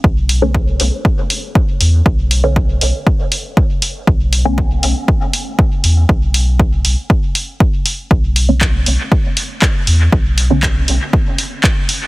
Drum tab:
HH |-o-o-o-o|-o-o-o-o|-o-o-o-o|-o-o-o-o|
CP |--------|--------|--------|--------|
BD |o-o-o-o-|o-o-o-o-|o-o-o-o-|o-o-o-o-|

HH |-o-o-o-o|-o-o-o-o|
CP |--x---x-|--x---x-|
BD |o-o-o-o-|o-o-o-o-|